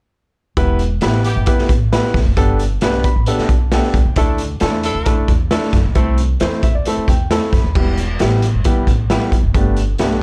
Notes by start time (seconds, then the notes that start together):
0.57 E1 B3 E4 G4 B4, kick, closed hi-hat
0.79 closed hi-hat
1.01 A1 B3 E4 G4 B4, snare, closed hi-hat
1.24 B3 E4 G4, closed hi-hat
1.36 G1
1.46 B3 E4 G4 B4, kick, closed hi-hat
1.58 muted upright bass stroke, snare
1.69 A1, kick, closed hi-hat
1.92 B3 E4 G4 B4, snare, closed hi-hat
2.04 snare
2.14 B1, kick, snare, open hi-hat
2.26 F#1
2.37 G1 B3 D4 G4 A4, kick, closed hi-hat
2.59 closed hi-hat
2.81 B1 B3 D4 G4 B4, snare, closed hi-hat
3.04 B5, kick, closed hi-hat
3.16 A1
3.26 B3 D4 G4 A4 A5, closed hi-hat
3.38 muted upright bass stroke, snare
3.49 B1, kick, closed hi-hat
3.72 B3 D4 G4 A4 G5, snare, closed hi-hat
3.83 snare
3.94 C2, kick, closed hi-hat
4.05 C#2
4.16 D2 A3 D4 E4 A4, kick, closed hi-hat
4.38 closed hi-hat
4.60 E2 A3 D4 E4 A4, snare, closed hi-hat
4.83 D4 E4 A4, closed hi-hat
4.95 D2
5.06 A3 D4 E4 A4, kick, closed hi-hat
5.17 muted upright bass stroke
5.28 E2, kick, closed hi-hat
5.51 A3 D4 E4 A4, snare, closed hi-hat
5.62 snare
5.73 F#2, kick, snare, closed hi-hat
5.85 B1
5.95 C2 A3 C4 E4 A4, kick, closed hi-hat
6.18 closed hi-hat
6.40 E2 A3 C4 E4 C5, snare, closed hi-hat
6.63 E5, kick, closed hi-hat
6.75 D2 D5
6.85 A3 C4 E4 A4 E5, closed hi-hat
6.97 muted upright bass stroke
7.08 E2 G5, kick, closed hi-hat
7.31 A3 C4 E4 A4 A5, snare, closed hi-hat
7.53 F#2 B5, kick, snare, closed hi-hat
7.64 D#2
7.75 E1 G3 B3 E4 G4, kick, crash
7.97 closed hi-hat
8.19 A1 G3 B3 E4 G4, snare, closed hi-hat
8.42 closed hi-hat
8.54 G1
8.64 G3 B3 E4 G4, kick, closed hi-hat
8.76 muted upright bass stroke
8.87 A1, kick, closed hi-hat
9.10 G3 B3 E4 G4, snare, closed hi-hat
9.32 B1, kick, closed hi-hat
9.43 F#1
9.54 G1 A3 B3 D4 G4, kick, closed hi-hat
9.76 closed hi-hat
9.98 B1 A3 B3 D4 G4, snare, closed hi-hat